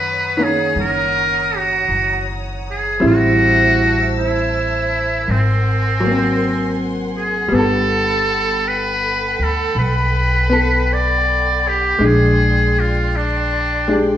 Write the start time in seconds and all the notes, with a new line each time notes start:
Already playing: F#2 D#3 C#4 B4 C#5 F#5 A#5 D#6
0.37 D#3 A#3 C#4
0.44 G#4
0.76 F#1
0.80 A#4
1.57 F#4
1.89 F#1
2.71 G#4
3.00 A1 G3 C4 E4 C5 E5 A5 E6
3.07 F#4
4.19 E4
5.28 G#1 C4 A#4 F#5 G#5 C6
6.00 F#3
6.06 A#3
6.11 C4
7.17 G#4
7.49 G1 G3 B3 A4 G5 B5
7.54 A4
7.59 A4
8.68 B4
9.39 D2
9.44 A4
9.75 B1 B4
10.50 B3 A4
10.93 D5
11.68 G4
11.99 A#1 G#3 D4 D5 C6
12.05 G#4
12.80 F4
13.16 D4
13.88 G#3 D4 G4